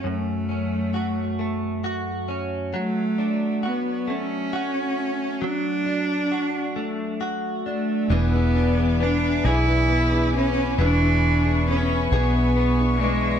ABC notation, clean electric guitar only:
X:1
M:6/8
L:1/8
Q:3/8=45
K:Emix
V:1 name="Clean electric guitar"
[F,,A,CF] C F A, F C | F, D F A, F2 | F, D F A, F D | E, D B, G B,2 |
E,2 B, G B, D |]